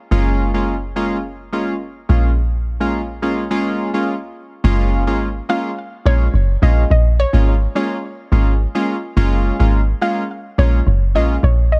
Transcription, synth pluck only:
5.50 6.02 F5 loud
6.06 6.64 C#5 loud
6.63 6.90 D#5 medium
6.91 7.17 D#5 medium
7.20 7.72 C#5 medium
7.76 8.85 C#5 medium
10.02 10.55 F5 loud
10.59 11.17 C#5 loud
11.15 11.44 D#5 loud
11.44 11.70 C#5 medium
11.72 11.80 D#5 medium

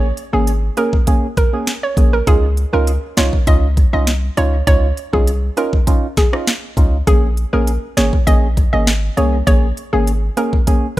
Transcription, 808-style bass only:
0.00 0.12 A#1 loud
0.33 0.70 G#1 medium
1.97 2.22 A#1 loud
2.27 2.65 C#2 loud
2.73 2.98 C#2 medium
3.17 3.30 C2 medium
3.47 3.85 C#2 loud
3.93 4.30 C2 medium
4.37 4.62 C#2 medium
4.67 4.92 C#2 loud
5.14 5.50 C2 medium
6.77 7.02 C#2 medium
7.07 7.45 A#1 loud
7.53 7.78 A#1 medium
7.97 8.11 G#1 medium
8.27 8.65 A#1 loud
8.73 9.10 G#1 medium
9.17 9.42 C2 medium
9.47 9.72 A#1 loud
9.93 10.30 G#1 medium

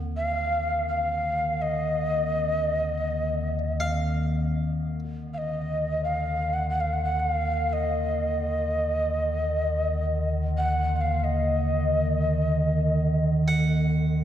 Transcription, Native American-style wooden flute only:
0.17 0.86 F5 medium
0.89 1.63 F5 medium
1.62 3.79 D#5 medium
5.34 5.39 F5 medium
5.38 6.02 D#5 medium
6.04 6.55 F5 medium
6.53 6.70 F#5 medium
6.70 6.82 F#5 medium
6.81 6.95 F5 medium
6.93 7.04 F#5 medium
7.04 7.21 F#5 medium
7.20 7.70 F5 medium
7.70 10.31 D#5 medium
7.70 7.74 F5 medium
10.58 10.96 F#5 medium
10.96 11.02 F#5 medium
11.01 11.19 F5 medium
11.19 11.25 F5 medium
11.24 13.32 D#5 medium

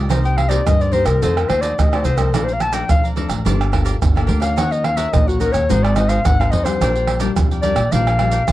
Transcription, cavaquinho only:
0.09 0.23 D#4 medium
0.09 0.23 A#4 medium
0.09 0.23 C5 medium
0.09 0.22 D#5 medium
0.23 0.47 A#4 soft
0.23 0.48 C5 soft
0.23 0.48 D#5 medium
0.49 0.60 D#4 medium
0.49 0.60 A#4 medium
0.49 0.60 C5 medium
0.49 0.60 D#5 medium
0.80 0.91 A#4 soft
0.80 0.92 C5 soft
0.80 0.92 D#5 soft
0.92 1.06 D#4 medium
0.92 1.06 A#4 medium
0.92 1.05 C5 medium
0.92 1.05 D#5 medium
1.06 1.21 A#4 soft
1.06 1.20 C5 soft
1.06 1.20 D#5 soft
1.22 1.47 F4 medium
1.22 1.48 A4 medium
1.22 1.48 C5 medium
1.22 1.49 D#5 medium
1.49 1.61 F4 soft
1.49 1.61 A4 soft
1.49 1.61 C5 medium
1.49 1.61 D#5 medium
1.62 1.72 F4 medium
1.62 1.73 A4 medium
1.62 1.72 C5 medium
1.62 1.73 D#5 medium
1.92 2.03 A4 soft
1.92 2.04 C5 soft
1.92 2.05 D#5 medium
2.04 2.18 F4 medium
2.04 2.18 A4 medium
2.04 2.18 C5 medium
2.04 2.17 D#5 medium
2.18 2.33 A4 soft
2.18 2.32 C5 soft
2.18 2.32 D#5 medium
2.34 2.47 A4 medium
2.34 2.47 D5 medium
2.34 2.47 F5 medium
2.34 2.47 A#5 medium
2.48 2.72 D5 soft
2.48 2.72 F5 soft
2.48 2.73 A#5 soft
2.73 2.83 A4 medium
2.73 2.84 D5 medium
2.73 2.84 F5 medium
2.73 2.84 A#5 medium
3.04 3.15 D5 soft
3.04 3.16 F5 soft
3.04 3.17 A#5 medium
3.16 3.30 A4 medium
3.16 3.29 D5 medium
3.16 3.28 F5 medium
3.16 3.27 A#5 medium
3.29 3.44 D5 soft
3.29 3.43 F5 soft
3.29 3.43 A#5 soft
3.45 3.71 G4 medium
3.45 3.71 A#4 medium
3.45 3.72 D5 medium
3.45 3.72 F5 medium
3.72 3.84 G4 soft
3.72 3.84 A#4 medium
3.72 3.84 D5 soft
3.72 3.84 F5 medium
3.85 3.95 G4 medium
3.85 3.96 A#4 medium
3.85 3.96 D5 medium
3.85 3.96 F5 medium
4.15 4.26 A#4 soft
4.15 4.26 D5 soft
4.15 4.27 F5 medium
4.27 4.41 G4 medium
4.27 4.40 A#4 medium
4.27 4.40 D5 medium
4.27 4.39 F5 medium
4.40 4.55 A#4 soft
4.40 4.55 D5 medium
4.40 4.54 F5 medium
4.56 4.70 D#4 medium
4.56 4.70 A#4 medium
4.56 4.70 C#5 medium
4.56 4.69 F#5 medium
4.71 4.96 A#4 soft
4.71 4.96 C#5 soft
4.71 4.96 F#5 soft
4.97 5.07 D#4 medium
4.97 5.07 A#4 medium
4.97 5.07 C#5 medium
4.97 5.07 F#5 medium
5.28 5.39 A#4 soft
5.28 5.40 C#5 soft
5.28 5.40 F#5 medium
5.40 5.53 D#4 medium
5.40 5.53 A#4 medium
5.40 5.52 C#5 medium
5.40 5.51 F#5 medium
5.52 5.67 A#4 soft
5.52 5.67 C#5 soft
5.52 5.67 F#5 medium
5.69 5.95 D#4 medium
5.69 5.96 G#4 medium
5.69 5.96 C5 medium
5.69 5.97 F#5 medium
5.97 6.08 D#4 medium
5.97 6.08 G#4 soft
5.97 6.09 C5 medium
5.97 6.09 F#5 medium
6.09 6.19 D#4 medium
6.09 6.19 G#4 medium
6.09 6.19 C5 medium
6.09 6.19 F#5 medium
6.40 6.51 G#4 soft
6.40 6.51 C5 medium
6.40 6.52 F#5 medium
6.52 6.65 D#4 medium
6.52 6.65 G#4 medium
6.52 6.64 C5 medium
6.52 6.63 F#5 medium
6.65 6.79 G#4 soft
6.65 6.79 C5 medium
6.65 6.78 F#5 medium
6.81 6.94 D4 medium
6.81 6.94 A#4 medium
6.81 6.94 D5 medium
6.81 6.94 G5 medium
6.96 7.19 A#4 soft
6.96 7.20 D5 soft
6.96 7.20 G5 medium
7.20 7.30 D4 medium
7.20 7.30 A#4 medium
7.20 7.31 D5 medium
7.20 7.31 G5 medium
7.52 7.62 A#4 soft
7.52 7.62 D5 soft
7.52 7.63 G5 soft
7.62 7.76 D4 medium
7.62 7.76 A#4 medium
7.62 7.76 D5 medium
7.62 7.75 G5 medium
7.76 7.91 A#4 soft
7.76 7.90 D5 soft
7.76 7.90 G5 soft
7.93 8.18 D4 medium
7.93 8.19 A#4 medium
7.93 8.19 D5 medium
7.93 8.20 G5 medium
8.19 8.30 D4 medium
8.19 8.31 A#4 soft
8.19 8.31 D5 medium
8.19 8.31 G5 medium
8.32 8.42 D4 medium
8.32 8.42 A#4 medium
8.32 8.42 D5 medium
8.32 8.42 G5 medium

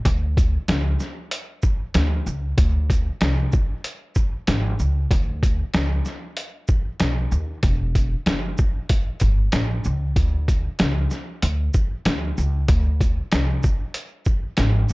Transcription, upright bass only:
0.05 0.55 D2 loud
0.68 0.93 C#2 medium
1.95 2.19 D2 loud
2.27 2.51 C#2 medium
2.58 3.07 D2 loud
3.21 3.45 C2 medium
4.48 4.72 G#1 loud
4.80 5.04 C#2 medium
5.11 5.60 D2 loud
5.74 5.99 C#2 medium
7.00 7.25 B1 medium
7.32 7.56 D#2 medium
7.64 8.13 E1 loud
8.26 8.51 F#1 medium
9.22 9.46 G1 medium
9.53 9.78 A1 medium
9.86 10.10 C#2 medium
10.16 10.65 D2 loud
10.80 11.04 C#2 medium
11.43 11.67 D2 loud
12.06 12.30 D2 loud
12.38 12.62 C#2 medium
12.69 13.18 D2 loud
13.33 13.57 C2 medium
14.59 14.83 G#1 loud

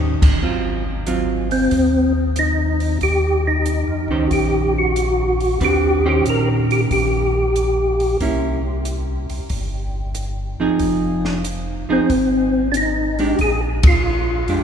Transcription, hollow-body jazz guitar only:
0.00 0.42 D#3 soft
0.00 0.42 C#4 soft
0.00 0.43 G4 soft
0.00 0.43 C5 soft
0.42 0.82 F#3 soft
0.42 0.83 C4 soft
0.42 0.83 F4 medium
1.07 1.47 F#3 medium
1.07 1.47 C4 medium
1.07 1.48 F4 medium
4.11 4.92 D#3 medium
4.11 4.92 C#4 medium
4.11 4.92 G4 medium
4.11 4.92 C5 medium
5.61 6.01 D3 medium
5.61 6.01 C4 soft
5.61 6.01 F#4 medium
5.61 6.02 B4 medium
6.05 7.43 D#3 medium
6.05 7.44 C#4 medium
6.05 7.44 G4 medium
6.05 7.44 C5 medium
8.21 8.61 A#3 soft
8.21 8.61 C#4 medium
8.21 8.61 E4 medium
10.60 11.41 F3 medium
10.60 11.41 C4 medium
10.60 11.41 D#4 medium
10.60 11.42 G#4 medium
11.89 12.07 F3 medium
11.89 12.08 C4 medium
11.89 12.08 D#4 medium
11.89 12.08 G#4 medium
13.19 13.37 G#3 medium
13.19 13.38 D4 medium
13.19 13.38 G4 medium
14.49 14.63 G#3 medium
14.49 14.63 D4 medium
14.49 14.63 G4 medium

